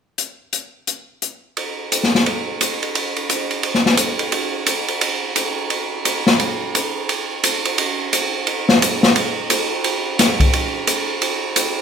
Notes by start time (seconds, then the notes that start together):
0.18 closed hi-hat
0.53 closed hi-hat
0.87 closed hi-hat
1.22 closed hi-hat
1.57 ride
1.92 hi-hat pedal, ride
2.03 snare
2.15 snare
2.26 ride
2.61 hi-hat pedal, ride
2.83 ride
2.95 ride
3.16 ride
3.30 hi-hat pedal, ride
3.51 ride
3.63 ride
3.75 snare
3.86 snare
3.97 hi-hat pedal, ride
4.19 ride
4.32 ride
4.66 hi-hat pedal, ride
4.88 ride
5.01 ride
5.36 hi-hat pedal, ride
5.70 ride
6.05 hi-hat pedal, ride
6.27 snare
6.40 ride
6.75 hi-hat pedal, ride
7.09 ride
7.44 hi-hat pedal, ride
7.65 ride
7.78 ride
8.13 hi-hat pedal, ride
8.47 ride
8.69 snare
8.82 hi-hat pedal, ride
9.03 snare
9.16 ride
9.50 hi-hat pedal, ride
9.84 ride
10.19 snare, hi-hat pedal, ride
10.40 kick, ride
10.53 ride
10.87 hi-hat pedal, ride
11.22 ride
11.56 hi-hat pedal, ride